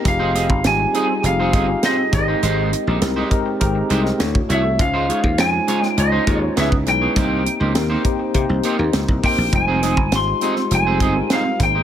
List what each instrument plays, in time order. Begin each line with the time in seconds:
0.04 slap bass F1, tine electric piano C4 D#4 F4 G4 G#4, lead electric guitar F5, muted clean electric guitar stroke, kick, closed hi-hat
0.20 clean electric guitar C4 D#4 G#4 C5
0.34 clean electric guitar C4 D#4 G#4 D#5, snare, closed hi-hat
0.50 slap bass G1, muted clean electric guitar stroke, kick
0.64 slap bass G#1, tine electric piano G3 C4 D#4 F4 G4, lead electric guitar G#5, snare, closed hi-hat
0.79 muted clean electric guitar stroke
0.93 tine electric piano G3 C4 D#4 F4 G#4, clean electric guitar C4 D#4 G#4 D#5, closed hi-hat
1.09 muted clean electric guitar stroke
1.22 slap bass F1, tine electric piano C4 D#4 F4 G4 G#4, lead electric guitar F5, muted clean electric guitar stroke, closed hi-hat
1.40 clean electric guitar C4 D#4 G#4 C5
1.53 slap bass G1, clean electric guitar C4 D#4 G#4 D#5, kick, closed hi-hat
1.68 tine electric piano C4 D#4 F4 G4 G#4, muted clean electric guitar stroke
1.83 clean electric guitar C4 D#4 G#4 C5, lead electric guitar D#5, snare, closed hi-hat
1.99 muted clean electric guitar stroke
2.12 slap bass G#1, tine electric piano G#3 C4 D#4 G4 G#4, lead electric guitar D#5, muted clean electric guitar stroke, kick, snare, closed hi-hat
2.19 tine electric piano A#4
2.28 clean electric guitar G#3 D#4 G4 C5
2.43 slap bass G#1, clean electric guitar G#3 D#4 G4 C5, closed hi-hat
2.73 muted clean electric guitar stroke, closed hi-hat
2.87 slap bass A#1, clean electric guitar G#3 D#4 G4 C5
3.00 slap bass C2, tine electric piano G#3 C4 D#4 G4 A#4, snare, closed hi-hat
3.16 clean electric guitar G#3 D#4 G4 C5
3.28 tine electric piano G#3 C4 D#4 G4 A#4, lead electric guitar C#5, muted clean electric guitar stroke, kick, closed hi-hat
3.46 muted clean electric guitar stroke
3.60 slap bass G#1, tine electric piano G#3 C4 D#4 G4 A#4, muted clean electric guitar stroke, kick, closed hi-hat
3.75 muted clean electric guitar stroke
3.90 slap bass C2, clean electric guitar G#3 D#4 G4 C5, closed hi-hat
4.04 tine electric piano G#3 C4 D#4 G4 A#4, muted clean electric guitar stroke, snare
4.18 slap bass D2, tine electric piano A3 D4 E4 F#4 C#5, muted clean electric guitar stroke, snare, closed hi-hat
4.34 muted clean electric guitar stroke, kick
4.49 slap bass C2, tine electric piano A3 D4 E4 F#4 C#5, clean electric guitar A3 E4 F#4 C#5, closed hi-hat
4.53 lead electric guitar E5
4.64 muted clean electric guitar stroke
4.78 slap bass C#2, tine electric piano G#3 C#4 D#4 F4 C5, lead electric guitar F5, muted clean electric guitar stroke, kick, closed hi-hat
4.94 clean electric guitar G#3 D#4 F4 C5
5.09 clean electric guitar G#3 D#4 F4 C#5, closed hi-hat
5.23 slap bass D#2, muted clean electric guitar stroke, kick
5.38 slap bass F2, tine electric piano G#3 C#4 D#4 F4 C5, lead electric guitar G#5, snare, closed hi-hat
5.53 muted clean electric guitar stroke
5.67 tine electric piano G#3 C#4 D#4 F4 C5, clean electric guitar G#3 D#4 F4 C#5, closed hi-hat
5.82 lead electric guitar G5, muted clean electric guitar stroke, snare
5.97 slap bass C#2, tine electric piano G#3 C#4 D#4 F4 C5, lead electric guitar D#5, muted clean electric guitar stroke, closed hi-hat
6.12 clean electric guitar G#3 D#4 F4 C5
6.27 slap bass D#2, clean electric guitar G#3 D#4 F4 C#5, kick, closed hi-hat
6.41 tine electric piano G#3 C#4 D#4 F4 C5, lead electric guitar C#5, muted clean electric guitar stroke
6.57 slap bass C#2, tine electric piano G#3 C#4 D#4 E4 B4, clean electric guitar B3 E4 G#4 C#5, lead electric guitar E5, snare, closed hi-hat
6.72 muted clean electric guitar stroke, kick
6.86 slap bass B1, tine electric piano G#3 C#4 D#4 E4 B4, lead electric guitar G5, muted clean electric guitar stroke, snare, closed hi-hat
7.01 clean electric guitar B3 E4 G#4 C#5
7.16 slap bass C2, clean electric guitar A#3 D#4 G4 C5, tine electric piano A#3 C4 D#4 G4 C5, kick, closed hi-hat
7.45 muted clean electric guitar stroke, closed hi-hat
7.60 slap bass C#2, clean electric guitar A#3 D#4 G4 C5
7.74 slap bass D#2, tine electric piano A#3 C4 D#4 G4 A#4, muted clean electric guitar stroke, snare, closed hi-hat
7.90 clean electric guitar A#3 D#4 G4 C5
8.05 tine electric piano A#3 C4 D#4 G4 C5, muted clean electric guitar stroke, kick, closed hi-hat
8.19 muted clean electric guitar stroke
8.34 slap bass C3, tine electric piano A#3 C4 D#4 G4 C5, muted clean electric guitar stroke, kick, closed hi-hat
8.49 slap bass C2, muted clean electric guitar stroke
8.63 clean electric guitar A#3 D#4 G4 C5, closed hi-hat
8.79 slap bass D#2, tine electric piano A#3 C4 D#4 G4 C5, muted clean electric guitar stroke
8.93 slap bass C#2, muted clean electric guitar stroke, snare, closed hi-hat
9.08 slap bass C2, muted clean electric guitar stroke, kick
9.23 clean electric guitar A#3 D#4 G4 C5, tine electric piano A#3 C4 D#4 G4 C5, lead electric guitar G5, kick, open hi-hat
9.38 slap bass A#1, muted clean electric guitar stroke
9.52 slap bass F1, tine electric piano G3 G#3 D#4 F4 C5, lead electric guitar G#5, muted clean electric guitar stroke, kick, closed hi-hat
9.68 clean electric guitar C4 D#4 G#4 C5
9.82 clean electric guitar C4 D#4 G#4 D#5, snare, closed hi-hat
9.97 slap bass G1, muted clean electric guitar stroke, kick
10.11 slap bass G#1, tine electric piano G#3 D#4 F4 G4 C5, snare, closed hi-hat
10.16 lead electric guitar C6
10.27 muted clean electric guitar stroke
10.41 tine electric piano G#3 D#4 F4 G4 C5, clean electric guitar C4 D#4 G#4 D#5, closed hi-hat
10.56 muted clean electric guitar stroke, snare
10.71 slap bass F1, tine electric piano G3 G#3 D#4 F4 C5, muted clean electric guitar stroke, closed hi-hat
10.75 lead electric guitar G#5
10.87 clean electric guitar C4 D#4 G#4 C5
11.00 slap bass G1, clean electric guitar C4 D#4 G#4 D#5, kick, closed hi-hat
11.15 tine electric piano G#3 D#4 F4 G4 A#4, muted clean electric guitar stroke
11.30 clean electric guitar C4 D#4 G#4 C5, lead electric guitar F5, snare, closed hi-hat
11.46 muted clean electric guitar stroke
11.58 slap bass G#1, tine electric piano A#3 D#4 G#4 C5, muted clean electric guitar stroke, kick, snare, closed hi-hat
11.63 lead electric guitar G5
11.75 clean electric guitar G#3 D#4 G4 C5